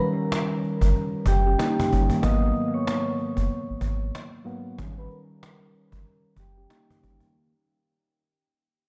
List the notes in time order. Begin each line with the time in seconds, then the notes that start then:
Already playing: D#3 G3 C#4
0.00 A#4 A#5
0.32 cajon slap
0.64 cajon slap
0.81 G1, cajon bass
0.96 cajon slap
1.26 F#1 G4 G5, cajon bass, cajon slap
1.46 C#4 G4
1.59 A#3 D#4, cajon slap
1.80 cajon bass
1.92 G1 G3 C#4, cajon bass
2.10 D#3 A#3, cajon bass
2.21 G#1 G#2 F#3 A#3 B3 D#5 D#6, cajon bass
2.43 cajon slap
2.55 cajon slap
2.74 C#5 C#6
2.87 cajon slap
3.19 cajon slap
3.37 F#1, cajon bass
3.51 cajon slap
3.70 G#1
3.81 G#1, cajon bass
4.15 cajon slap
4.44 G#2 F#3 A#3 B3, cajon slap
4.78 G#1 D#3 G3 C#4, cajon bass
4.98 B4 B5, cajon slap
5.10 A#4 A#5, cajon slap
5.43 cajon slap
5.74 cajon slap
5.92 G1, cajon bass
6.07 cajon slap
6.36 F#1 G4 G5, cajon bass, cajon slap
6.57 C#4 G4
6.69 A#3 D#4, cajon slap
6.90 cajon bass
7.02 G1 G3 C#4, cajon bass
7.20 D#3 A#3, cajon bass